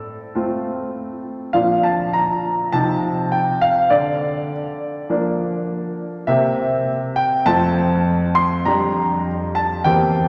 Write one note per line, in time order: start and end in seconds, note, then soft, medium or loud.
0.00 1.50 A2 soft
0.00 1.54 A4 medium
0.35 1.50 A3 soft
0.35 1.51 C4 soft
0.35 1.51 F4 soft
1.53 2.70 A#2 soft
1.53 2.70 F3 soft
1.53 2.70 D4 soft
1.53 2.70 F4 soft
1.53 1.83 F5 medium
1.83 2.14 A5 medium
2.13 2.73 A#5 medium
2.72 3.88 C3 soft
2.72 3.88 F3 soft
2.72 3.88 C4 soft
2.72 3.88 D#4 soft
2.72 3.32 A5 medium
3.32 3.62 G5 medium
3.61 3.91 F5 medium
3.90 6.24 D3 soft
3.90 6.28 D5 medium
5.09 6.24 F3 soft
5.09 6.25 A#3 soft
5.09 6.25 D4 soft
6.27 7.43 C3 soft
6.27 7.43 A#3 soft
6.27 7.43 C4 soft
6.27 7.43 G4 soft
6.27 7.17 E5 medium
7.16 7.46 G5 medium
7.46 8.62 F2 medium
7.46 8.62 A3 soft
7.46 8.62 C4 soft
7.46 8.63 F4 soft
7.46 8.36 A5 loud
8.35 8.66 C6 medium
8.65 9.82 F2 medium
8.65 9.82 G3 soft
8.65 9.82 D4 soft
8.65 9.82 G4 soft
8.65 9.55 A#5 medium
9.55 9.85 A5 medium
9.84 10.28 E2 medium
9.84 10.28 A#3 soft
9.84 10.28 C4 soft
9.84 10.28 G4 soft
9.84 10.28 G5 medium